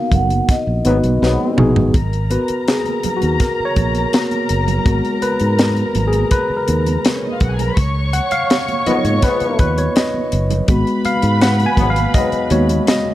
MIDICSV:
0, 0, Header, 1, 8, 480
1, 0, Start_track
1, 0, Tempo, 729040
1, 1281, Time_signature, 4, 2, 24, 8
1, 8652, End_track
2, 0, Start_track
2, 0, Title_t, "Vibraphone"
2, 0, Program_c, 0, 11
2, 94, Note_on_c, 0, 78, 76
2, 334, Note_off_c, 0, 78, 0
2, 334, Note_on_c, 0, 75, 75
2, 1021, Note_off_c, 0, 75, 0
2, 8652, End_track
3, 0, Start_track
3, 0, Title_t, "String section"
3, 0, Program_c, 1, 48
3, 1282, Note_on_c, 1, 70, 84
3, 1283, Note_on_c, 1, 82, 101
3, 4626, Note_off_c, 1, 70, 0
3, 4627, Note_off_c, 1, 82, 0
3, 4695, Note_on_c, 1, 61, 56
3, 4697, Note_on_c, 1, 73, 62
3, 4758, Note_off_c, 1, 61, 0
3, 4759, Note_off_c, 1, 73, 0
3, 4760, Note_on_c, 1, 63, 60
3, 4760, Note_on_c, 1, 75, 70
3, 4817, Note_on_c, 1, 77, 73
3, 4818, Note_on_c, 1, 65, 63
3, 4820, Note_off_c, 1, 63, 0
3, 4820, Note_off_c, 1, 75, 0
3, 4879, Note_off_c, 1, 65, 0
3, 4879, Note_off_c, 1, 77, 0
3, 4879, Note_on_c, 1, 66, 68
3, 4881, Note_on_c, 1, 78, 77
3, 4937, Note_on_c, 1, 80, 89
3, 4938, Note_on_c, 1, 68, 75
3, 4939, Note_off_c, 1, 66, 0
3, 4940, Note_off_c, 1, 78, 0
3, 4995, Note_on_c, 1, 82, 90
3, 4996, Note_on_c, 1, 70, 79
3, 4998, Note_off_c, 1, 80, 0
3, 4999, Note_off_c, 1, 68, 0
3, 5056, Note_on_c, 1, 71, 79
3, 5056, Note_on_c, 1, 83, 92
3, 5057, Note_off_c, 1, 82, 0
3, 5058, Note_off_c, 1, 70, 0
3, 5113, Note_on_c, 1, 85, 104
3, 5116, Note_on_c, 1, 73, 97
3, 5118, Note_off_c, 1, 71, 0
3, 5118, Note_off_c, 1, 83, 0
3, 6768, Note_off_c, 1, 85, 0
3, 6769, Note_off_c, 1, 73, 0
3, 7033, Note_on_c, 1, 83, 112
3, 7034, Note_on_c, 1, 71, 98
3, 8652, Note_off_c, 1, 71, 0
3, 8652, Note_off_c, 1, 83, 0
3, 8652, End_track
4, 0, Start_track
4, 0, Title_t, "Tine electric piano"
4, 0, Program_c, 2, 4
4, 0, Control_c, 2, 64, 127
4, 0, Note_on_c, 2, 59, 67
4, 0, Note_on_c, 2, 63, 63
4, 0, Note_on_c, 2, 66, 65
4, 0, Note_on_c, 2, 70, 77
4, 287, Note_off_c, 2, 59, 0
4, 288, Note_off_c, 2, 63, 0
4, 291, Note_off_c, 2, 66, 0
4, 293, Note_off_c, 2, 70, 0
4, 560, Note_on_c, 2, 59, 68
4, 564, Note_on_c, 2, 63, 68
4, 567, Note_on_c, 2, 66, 64
4, 572, Note_on_c, 2, 71, 78
4, 884, Note_off_c, 2, 59, 0
4, 886, Note_off_c, 2, 63, 0
4, 887, Note_off_c, 2, 66, 0
4, 890, Note_off_c, 2, 71, 0
4, 1035, Note_on_c, 2, 59, 83
4, 1039, Note_on_c, 2, 63, 76
4, 1042, Note_on_c, 2, 66, 72
4, 1048, Note_on_c, 2, 68, 91
4, 1200, Note_off_c, 2, 59, 0
4, 1202, Note_off_c, 2, 63, 0
4, 1203, Note_off_c, 2, 66, 0
4, 1206, Note_off_c, 2, 68, 0
4, 1289, Control_c, 2, 64, 0
4, 1418, Control_c, 2, 64, 127
4, 1516, Note_on_c, 2, 70, 51
4, 1519, Note_on_c, 2, 59, 49
4, 1522, Note_on_c, 2, 71, 77
4, 1523, Note_on_c, 2, 66, 58
4, 1767, Note_on_c, 2, 68, 73
4, 1769, Note_off_c, 2, 71, 0
4, 1838, Note_off_c, 2, 70, 0
4, 1839, Note_off_c, 2, 59, 0
4, 1842, Note_off_c, 2, 66, 0
4, 2085, Note_on_c, 2, 66, 74
4, 2094, Note_off_c, 2, 68, 0
4, 2248, Note_off_c, 2, 66, 0
4, 2249, Note_on_c, 2, 70, 92
4, 2405, Note_on_c, 2, 73, 94
4, 2410, Note_off_c, 2, 70, 0
4, 2716, Note_on_c, 2, 58, 44
4, 2718, Note_on_c, 2, 59, 39
4, 2720, Note_on_c, 2, 66, 49
4, 2857, Note_off_c, 2, 73, 0
4, 2934, Note_off_c, 2, 58, 0
4, 2935, Note_off_c, 2, 59, 0
4, 2937, Note_off_c, 2, 66, 0
4, 3192, Note_on_c, 2, 56, 56
4, 3196, Note_on_c, 2, 59, 50
4, 3200, Note_on_c, 2, 66, 60
4, 3439, Note_on_c, 2, 71, 94
4, 3663, Note_off_c, 2, 71, 0
4, 3680, Note_on_c, 2, 70, 91
4, 3890, Note_off_c, 2, 56, 0
4, 3892, Note_off_c, 2, 59, 0
4, 3894, Note_off_c, 2, 66, 0
4, 3978, Note_off_c, 2, 70, 0
4, 4000, Note_on_c, 2, 68, 82
4, 4149, Note_off_c, 2, 68, 0
4, 4158, Note_on_c, 2, 71, 100
4, 4324, Note_off_c, 2, 71, 0
4, 4325, Note_on_c, 2, 70, 90
4, 4776, Note_off_c, 2, 70, 0
4, 5128, Control_c, 2, 64, 0
4, 5256, Control_c, 2, 64, 127
4, 5355, Note_on_c, 2, 78, 102
4, 5476, Note_on_c, 2, 77, 104
4, 5481, Note_off_c, 2, 78, 0
4, 5812, Note_off_c, 2, 77, 0
4, 5835, Note_on_c, 2, 70, 51
4, 5838, Note_on_c, 2, 59, 52
4, 5839, Note_on_c, 2, 75, 91
4, 5840, Note_on_c, 2, 63, 53
4, 5842, Note_on_c, 2, 65, 60
4, 5950, Note_off_c, 2, 75, 0
4, 5959, Note_on_c, 2, 73, 91
4, 6079, Note_on_c, 2, 71, 94
4, 6082, Note_off_c, 2, 73, 0
4, 6311, Note_off_c, 2, 71, 0
4, 6319, Note_on_c, 2, 71, 87
4, 6442, Note_off_c, 2, 71, 0
4, 6442, Note_on_c, 2, 73, 80
4, 6530, Note_off_c, 2, 70, 0
4, 6531, Note_off_c, 2, 59, 0
4, 6532, Note_off_c, 2, 63, 0
4, 6533, Note_off_c, 2, 65, 0
4, 6552, Note_off_c, 2, 73, 0
4, 6558, Note_on_c, 2, 75, 77
4, 6781, Note_off_c, 2, 75, 0
4, 7034, Note_on_c, 2, 56, 61
4, 7041, Note_on_c, 2, 59, 56
4, 7044, Note_on_c, 2, 66, 64
4, 7045, Control_c, 2, 64, 0
4, 7160, Control_c, 2, 64, 127
4, 7279, Note_on_c, 2, 77, 99
4, 7516, Note_on_c, 2, 78, 96
4, 7525, Note_off_c, 2, 77, 0
4, 7678, Note_on_c, 2, 80, 90
4, 7681, Note_off_c, 2, 78, 0
4, 7729, Note_off_c, 2, 56, 0
4, 7732, Note_off_c, 2, 59, 0
4, 7734, Note_off_c, 2, 66, 0
4, 7836, Note_on_c, 2, 77, 94
4, 7842, Note_off_c, 2, 80, 0
4, 7985, Note_off_c, 2, 77, 0
4, 7995, Note_on_c, 2, 75, 94
4, 8219, Note_off_c, 2, 75, 0
4, 8235, Note_on_c, 2, 56, 53
4, 8238, Note_on_c, 2, 59, 46
4, 8240, Note_on_c, 2, 66, 60
4, 8241, Note_on_c, 2, 73, 83
4, 8451, Note_off_c, 2, 56, 0
4, 8453, Note_off_c, 2, 59, 0
4, 8454, Note_off_c, 2, 66, 0
4, 8486, Note_off_c, 2, 73, 0
4, 8488, Note_on_c, 2, 75, 79
4, 8652, Note_off_c, 2, 75, 0
4, 8652, End_track
5, 0, Start_track
5, 0, Title_t, "Trombone section"
5, 0, Program_c, 3, 61
5, 561, Note_on_c, 3, 54, 82
5, 561, Note_on_c, 3, 59, 83
5, 562, Note_on_c, 3, 44, 83
5, 637, Note_off_c, 3, 59, 0
5, 638, Note_off_c, 3, 44, 0
5, 638, Note_off_c, 3, 54, 0
5, 802, Note_on_c, 3, 44, 83
5, 802, Note_on_c, 3, 54, 78
5, 802, Note_on_c, 3, 59, 92
5, 1143, Note_off_c, 3, 44, 0
5, 1144, Note_off_c, 3, 54, 0
5, 1144, Note_off_c, 3, 59, 0
5, 5837, Note_on_c, 3, 44, 85
5, 5838, Note_on_c, 3, 53, 80
5, 5838, Note_on_c, 3, 59, 94
5, 5914, Note_off_c, 3, 44, 0
5, 5914, Note_off_c, 3, 53, 0
5, 5915, Note_off_c, 3, 59, 0
5, 6079, Note_on_c, 3, 53, 91
5, 6079, Note_on_c, 3, 59, 97
5, 6080, Note_on_c, 3, 44, 86
5, 6420, Note_off_c, 3, 59, 0
5, 6421, Note_off_c, 3, 44, 0
5, 6421, Note_off_c, 3, 53, 0
5, 7754, Note_on_c, 3, 44, 86
5, 7755, Note_on_c, 3, 54, 80
5, 7755, Note_on_c, 3, 59, 95
5, 7831, Note_off_c, 3, 44, 0
5, 7832, Note_off_c, 3, 54, 0
5, 7832, Note_off_c, 3, 59, 0
5, 7995, Note_on_c, 3, 54, 85
5, 7996, Note_on_c, 3, 44, 86
5, 7997, Note_on_c, 3, 59, 93
5, 8338, Note_off_c, 3, 44, 0
5, 8338, Note_off_c, 3, 54, 0
5, 8339, Note_off_c, 3, 59, 0
5, 8652, End_track
6, 0, Start_track
6, 0, Title_t, "Fingered electric bass"
6, 0, Program_c, 4, 33
6, 78, Note_on_c, 4, 30, 82
6, 260, Note_off_c, 4, 30, 0
6, 442, Note_on_c, 4, 34, 74
6, 532, Note_off_c, 4, 34, 0
6, 564, Note_on_c, 4, 32, 83
6, 653, Note_off_c, 4, 32, 0
6, 683, Note_on_c, 4, 35, 82
6, 773, Note_off_c, 4, 35, 0
6, 805, Note_on_c, 4, 35, 89
6, 894, Note_off_c, 4, 35, 0
6, 1045, Note_on_c, 4, 34, 84
6, 1134, Note_off_c, 4, 34, 0
6, 1164, Note_on_c, 4, 32, 78
6, 1254, Note_off_c, 4, 32, 0
6, 1280, Note_on_c, 4, 32, 90
6, 1552, Note_off_c, 4, 32, 0
6, 2126, Note_on_c, 4, 39, 82
6, 2215, Note_off_c, 4, 39, 0
6, 2481, Note_on_c, 4, 34, 87
6, 2662, Note_off_c, 4, 34, 0
6, 2965, Note_on_c, 4, 30, 80
6, 3144, Note_off_c, 4, 30, 0
6, 3198, Note_on_c, 4, 32, 106
6, 3290, Note_off_c, 4, 32, 0
6, 3561, Note_on_c, 4, 44, 86
6, 3832, Note_off_c, 4, 44, 0
6, 3918, Note_on_c, 4, 32, 83
6, 4100, Note_off_c, 4, 32, 0
6, 4402, Note_on_c, 4, 39, 84
6, 4582, Note_off_c, 4, 39, 0
6, 4880, Note_on_c, 4, 35, 87
6, 5061, Note_off_c, 4, 35, 0
6, 5118, Note_on_c, 4, 37, 104
6, 5390, Note_off_c, 4, 37, 0
6, 5955, Note_on_c, 4, 44, 80
6, 6047, Note_off_c, 4, 44, 0
6, 6316, Note_on_c, 4, 39, 88
6, 6498, Note_off_c, 4, 39, 0
6, 6799, Note_on_c, 4, 30, 92
6, 6979, Note_off_c, 4, 30, 0
6, 7037, Note_on_c, 4, 32, 99
6, 7127, Note_off_c, 4, 32, 0
6, 7395, Note_on_c, 4, 44, 98
6, 7667, Note_off_c, 4, 44, 0
6, 7752, Note_on_c, 4, 32, 94
6, 7935, Note_off_c, 4, 32, 0
6, 8236, Note_on_c, 4, 39, 102
6, 8417, Note_off_c, 4, 39, 0
6, 8652, End_track
7, 0, Start_track
7, 0, Title_t, "Muted fingered electric bass strokes"
7, 1645, Note_on_c, 9, 29, 42
7, 1711, Note_off_c, 9, 29, 0
7, 2006, Note_on_c, 9, 29, 43
7, 2072, Note_off_c, 9, 29, 0
7, 2370, Note_on_c, 9, 29, 43
7, 2436, Note_off_c, 9, 29, 0
7, 3441, Note_on_c, 9, 29, 39
7, 3507, Note_off_c, 9, 29, 0
7, 4279, Note_on_c, 9, 29, 44
7, 4345, Note_off_c, 9, 29, 0
7, 5478, Note_on_c, 9, 29, 46
7, 5544, Note_off_c, 9, 29, 0
7, 5837, Note_on_c, 9, 29, 45
7, 5902, Note_off_c, 9, 29, 0
7, 6198, Note_on_c, 9, 29, 48
7, 6263, Note_off_c, 9, 29, 0
7, 7276, Note_on_c, 9, 29, 44
7, 7342, Note_off_c, 9, 29, 0
7, 8115, Note_on_c, 9, 29, 49
7, 8180, Note_off_c, 9, 29, 0
7, 8652, End_track
8, 0, Start_track
8, 0, Title_t, "Drums"
8, 76, Note_on_c, 9, 36, 92
8, 80, Note_on_c, 9, 42, 70
8, 88, Note_on_c, 9, 64, 75
8, 142, Note_off_c, 9, 36, 0
8, 145, Note_off_c, 9, 42, 0
8, 154, Note_off_c, 9, 64, 0
8, 200, Note_on_c, 9, 42, 44
8, 200, Note_on_c, 9, 63, 70
8, 266, Note_off_c, 9, 42, 0
8, 266, Note_off_c, 9, 63, 0
8, 320, Note_on_c, 9, 42, 100
8, 321, Note_on_c, 9, 36, 91
8, 323, Note_on_c, 9, 62, 30
8, 332, Note_on_c, 9, 38, 35
8, 386, Note_off_c, 9, 42, 0
8, 387, Note_off_c, 9, 36, 0
8, 389, Note_off_c, 9, 62, 0
8, 398, Note_off_c, 9, 38, 0
8, 558, Note_on_c, 9, 42, 67
8, 567, Note_on_c, 9, 62, 31
8, 567, Note_on_c, 9, 63, 66
8, 624, Note_off_c, 9, 42, 0
8, 633, Note_off_c, 9, 62, 0
8, 633, Note_off_c, 9, 63, 0
8, 682, Note_on_c, 9, 42, 43
8, 686, Note_on_c, 9, 63, 71
8, 748, Note_off_c, 9, 42, 0
8, 752, Note_off_c, 9, 63, 0
8, 809, Note_on_c, 9, 38, 53
8, 875, Note_off_c, 9, 38, 0
8, 922, Note_on_c, 9, 63, 64
8, 988, Note_off_c, 9, 63, 0
8, 1039, Note_on_c, 9, 45, 92
8, 1044, Note_on_c, 9, 62, 27
8, 1105, Note_off_c, 9, 45, 0
8, 1110, Note_off_c, 9, 62, 0
8, 1160, Note_on_c, 9, 43, 85
8, 1161, Note_on_c, 9, 64, 70
8, 1226, Note_off_c, 9, 43, 0
8, 1227, Note_off_c, 9, 64, 0
8, 1278, Note_on_c, 9, 42, 81
8, 1279, Note_on_c, 9, 36, 116
8, 1344, Note_off_c, 9, 42, 0
8, 1345, Note_off_c, 9, 36, 0
8, 1403, Note_on_c, 9, 42, 34
8, 1468, Note_off_c, 9, 42, 0
8, 1514, Note_on_c, 9, 62, 34
8, 1518, Note_on_c, 9, 42, 65
8, 1580, Note_off_c, 9, 62, 0
8, 1584, Note_off_c, 9, 42, 0
8, 1634, Note_on_c, 9, 42, 52
8, 1700, Note_off_c, 9, 42, 0
8, 1762, Note_on_c, 9, 42, 75
8, 1767, Note_on_c, 9, 38, 101
8, 1828, Note_off_c, 9, 42, 0
8, 1833, Note_off_c, 9, 38, 0
8, 1874, Note_on_c, 9, 63, 63
8, 1881, Note_on_c, 9, 42, 31
8, 1940, Note_off_c, 9, 63, 0
8, 1947, Note_off_c, 9, 42, 0
8, 1998, Note_on_c, 9, 42, 68
8, 2003, Note_on_c, 9, 62, 32
8, 2003, Note_on_c, 9, 64, 71
8, 2064, Note_off_c, 9, 42, 0
8, 2069, Note_off_c, 9, 62, 0
8, 2069, Note_off_c, 9, 64, 0
8, 2116, Note_on_c, 9, 63, 66
8, 2119, Note_on_c, 9, 42, 48
8, 2182, Note_off_c, 9, 63, 0
8, 2184, Note_off_c, 9, 42, 0
8, 2235, Note_on_c, 9, 62, 31
8, 2238, Note_on_c, 9, 42, 94
8, 2239, Note_on_c, 9, 36, 84
8, 2249, Note_on_c, 9, 38, 36
8, 2301, Note_off_c, 9, 62, 0
8, 2303, Note_off_c, 9, 42, 0
8, 2305, Note_off_c, 9, 36, 0
8, 2315, Note_off_c, 9, 38, 0
8, 2477, Note_on_c, 9, 62, 30
8, 2477, Note_on_c, 9, 63, 69
8, 2478, Note_on_c, 9, 42, 68
8, 2479, Note_on_c, 9, 36, 79
8, 2543, Note_off_c, 9, 42, 0
8, 2543, Note_off_c, 9, 62, 0
8, 2543, Note_off_c, 9, 63, 0
8, 2545, Note_off_c, 9, 36, 0
8, 2598, Note_on_c, 9, 42, 44
8, 2601, Note_on_c, 9, 63, 68
8, 2664, Note_off_c, 9, 42, 0
8, 2667, Note_off_c, 9, 63, 0
8, 2720, Note_on_c, 9, 42, 88
8, 2727, Note_on_c, 9, 38, 104
8, 2786, Note_off_c, 9, 42, 0
8, 2793, Note_off_c, 9, 38, 0
8, 2839, Note_on_c, 9, 42, 37
8, 2840, Note_on_c, 9, 63, 61
8, 2905, Note_off_c, 9, 42, 0
8, 2906, Note_off_c, 9, 63, 0
8, 2957, Note_on_c, 9, 42, 68
8, 3023, Note_off_c, 9, 42, 0
8, 3074, Note_on_c, 9, 64, 72
8, 3081, Note_on_c, 9, 42, 45
8, 3140, Note_off_c, 9, 64, 0
8, 3146, Note_off_c, 9, 42, 0
8, 3198, Note_on_c, 9, 36, 118
8, 3199, Note_on_c, 9, 42, 84
8, 3264, Note_off_c, 9, 36, 0
8, 3265, Note_off_c, 9, 42, 0
8, 3323, Note_on_c, 9, 42, 32
8, 3389, Note_off_c, 9, 42, 0
8, 3437, Note_on_c, 9, 42, 67
8, 3503, Note_off_c, 9, 42, 0
8, 3552, Note_on_c, 9, 42, 48
8, 3618, Note_off_c, 9, 42, 0
8, 3675, Note_on_c, 9, 62, 32
8, 3678, Note_on_c, 9, 42, 76
8, 3683, Note_on_c, 9, 38, 107
8, 3741, Note_off_c, 9, 62, 0
8, 3744, Note_off_c, 9, 42, 0
8, 3749, Note_off_c, 9, 38, 0
8, 3795, Note_on_c, 9, 63, 60
8, 3796, Note_on_c, 9, 42, 32
8, 3860, Note_off_c, 9, 63, 0
8, 3861, Note_off_c, 9, 42, 0
8, 3916, Note_on_c, 9, 42, 73
8, 3922, Note_on_c, 9, 62, 32
8, 3922, Note_on_c, 9, 64, 70
8, 3982, Note_off_c, 9, 42, 0
8, 3988, Note_off_c, 9, 62, 0
8, 3988, Note_off_c, 9, 64, 0
8, 4034, Note_on_c, 9, 42, 46
8, 4036, Note_on_c, 9, 63, 63
8, 4100, Note_off_c, 9, 42, 0
8, 4102, Note_off_c, 9, 63, 0
8, 4154, Note_on_c, 9, 42, 101
8, 4157, Note_on_c, 9, 36, 83
8, 4220, Note_off_c, 9, 42, 0
8, 4223, Note_off_c, 9, 36, 0
8, 4396, Note_on_c, 9, 42, 66
8, 4398, Note_on_c, 9, 62, 33
8, 4398, Note_on_c, 9, 63, 67
8, 4462, Note_off_c, 9, 42, 0
8, 4464, Note_off_c, 9, 62, 0
8, 4464, Note_off_c, 9, 63, 0
8, 4519, Note_on_c, 9, 42, 47
8, 4523, Note_on_c, 9, 63, 76
8, 4585, Note_off_c, 9, 42, 0
8, 4589, Note_off_c, 9, 63, 0
8, 4638, Note_on_c, 9, 62, 29
8, 4639, Note_on_c, 9, 42, 87
8, 4646, Note_on_c, 9, 38, 105
8, 4704, Note_off_c, 9, 62, 0
8, 4705, Note_off_c, 9, 42, 0
8, 4712, Note_off_c, 9, 38, 0
8, 4761, Note_on_c, 9, 63, 59
8, 4827, Note_off_c, 9, 63, 0
8, 4875, Note_on_c, 9, 42, 74
8, 4878, Note_on_c, 9, 36, 93
8, 4941, Note_off_c, 9, 42, 0
8, 4944, Note_off_c, 9, 36, 0
8, 4998, Note_on_c, 9, 42, 51
8, 4998, Note_on_c, 9, 64, 73
8, 5064, Note_off_c, 9, 42, 0
8, 5064, Note_off_c, 9, 64, 0
8, 5115, Note_on_c, 9, 42, 92
8, 5116, Note_on_c, 9, 36, 117
8, 5181, Note_off_c, 9, 42, 0
8, 5182, Note_off_c, 9, 36, 0
8, 5355, Note_on_c, 9, 42, 69
8, 5358, Note_on_c, 9, 62, 35
8, 5421, Note_off_c, 9, 42, 0
8, 5424, Note_off_c, 9, 62, 0
8, 5471, Note_on_c, 9, 42, 49
8, 5537, Note_off_c, 9, 42, 0
8, 5598, Note_on_c, 9, 42, 77
8, 5599, Note_on_c, 9, 62, 31
8, 5603, Note_on_c, 9, 38, 104
8, 5664, Note_off_c, 9, 42, 0
8, 5665, Note_off_c, 9, 62, 0
8, 5668, Note_off_c, 9, 38, 0
8, 5717, Note_on_c, 9, 42, 34
8, 5718, Note_on_c, 9, 63, 63
8, 5783, Note_off_c, 9, 42, 0
8, 5784, Note_off_c, 9, 63, 0
8, 5836, Note_on_c, 9, 42, 72
8, 5845, Note_on_c, 9, 62, 36
8, 5845, Note_on_c, 9, 64, 69
8, 5902, Note_off_c, 9, 42, 0
8, 5911, Note_off_c, 9, 62, 0
8, 5911, Note_off_c, 9, 64, 0
8, 5956, Note_on_c, 9, 63, 73
8, 5957, Note_on_c, 9, 42, 48
8, 6021, Note_off_c, 9, 63, 0
8, 6023, Note_off_c, 9, 42, 0
8, 6073, Note_on_c, 9, 42, 102
8, 6076, Note_on_c, 9, 36, 95
8, 6085, Note_on_c, 9, 38, 36
8, 6139, Note_off_c, 9, 42, 0
8, 6142, Note_off_c, 9, 36, 0
8, 6151, Note_off_c, 9, 38, 0
8, 6191, Note_on_c, 9, 42, 37
8, 6257, Note_off_c, 9, 42, 0
8, 6313, Note_on_c, 9, 42, 69
8, 6316, Note_on_c, 9, 36, 90
8, 6320, Note_on_c, 9, 62, 33
8, 6320, Note_on_c, 9, 63, 67
8, 6379, Note_off_c, 9, 42, 0
8, 6382, Note_off_c, 9, 36, 0
8, 6385, Note_off_c, 9, 62, 0
8, 6385, Note_off_c, 9, 63, 0
8, 6437, Note_on_c, 9, 42, 50
8, 6441, Note_on_c, 9, 63, 73
8, 6503, Note_off_c, 9, 42, 0
8, 6506, Note_off_c, 9, 63, 0
8, 6556, Note_on_c, 9, 42, 82
8, 6557, Note_on_c, 9, 62, 29
8, 6562, Note_on_c, 9, 38, 108
8, 6622, Note_off_c, 9, 42, 0
8, 6623, Note_off_c, 9, 62, 0
8, 6628, Note_off_c, 9, 38, 0
8, 6677, Note_on_c, 9, 63, 63
8, 6742, Note_off_c, 9, 63, 0
8, 6795, Note_on_c, 9, 42, 70
8, 6861, Note_off_c, 9, 42, 0
8, 6916, Note_on_c, 9, 42, 50
8, 6916, Note_on_c, 9, 64, 69
8, 6982, Note_off_c, 9, 42, 0
8, 6982, Note_off_c, 9, 64, 0
8, 7032, Note_on_c, 9, 42, 88
8, 7035, Note_on_c, 9, 36, 109
8, 7098, Note_off_c, 9, 42, 0
8, 7101, Note_off_c, 9, 36, 0
8, 7158, Note_on_c, 9, 42, 33
8, 7224, Note_off_c, 9, 42, 0
8, 7273, Note_on_c, 9, 42, 73
8, 7276, Note_on_c, 9, 62, 36
8, 7339, Note_off_c, 9, 42, 0
8, 7341, Note_off_c, 9, 62, 0
8, 7390, Note_on_c, 9, 42, 53
8, 7456, Note_off_c, 9, 42, 0
8, 7515, Note_on_c, 9, 42, 77
8, 7520, Note_on_c, 9, 38, 107
8, 7581, Note_off_c, 9, 42, 0
8, 7586, Note_off_c, 9, 38, 0
8, 7635, Note_on_c, 9, 42, 34
8, 7637, Note_on_c, 9, 63, 60
8, 7701, Note_off_c, 9, 42, 0
8, 7703, Note_off_c, 9, 63, 0
8, 7751, Note_on_c, 9, 36, 93
8, 7753, Note_on_c, 9, 42, 76
8, 7762, Note_on_c, 9, 62, 31
8, 7762, Note_on_c, 9, 64, 78
8, 7817, Note_off_c, 9, 36, 0
8, 7819, Note_off_c, 9, 42, 0
8, 7828, Note_off_c, 9, 62, 0
8, 7828, Note_off_c, 9, 64, 0
8, 7875, Note_on_c, 9, 42, 50
8, 7876, Note_on_c, 9, 63, 71
8, 7941, Note_off_c, 9, 42, 0
8, 7942, Note_off_c, 9, 63, 0
8, 7993, Note_on_c, 9, 42, 97
8, 7995, Note_on_c, 9, 36, 83
8, 8059, Note_off_c, 9, 42, 0
8, 8061, Note_off_c, 9, 36, 0
8, 8112, Note_on_c, 9, 42, 36
8, 8178, Note_off_c, 9, 42, 0
8, 8231, Note_on_c, 9, 42, 71
8, 8240, Note_on_c, 9, 63, 74
8, 8297, Note_off_c, 9, 42, 0
8, 8306, Note_off_c, 9, 63, 0
8, 8357, Note_on_c, 9, 42, 51
8, 8359, Note_on_c, 9, 63, 71
8, 8423, Note_off_c, 9, 42, 0
8, 8425, Note_off_c, 9, 63, 0
8, 8476, Note_on_c, 9, 42, 89
8, 8482, Note_on_c, 9, 38, 107
8, 8542, Note_off_c, 9, 42, 0
8, 8548, Note_off_c, 9, 38, 0
8, 8595, Note_on_c, 9, 63, 70
8, 8652, Note_off_c, 9, 63, 0
8, 8652, End_track
0, 0, End_of_file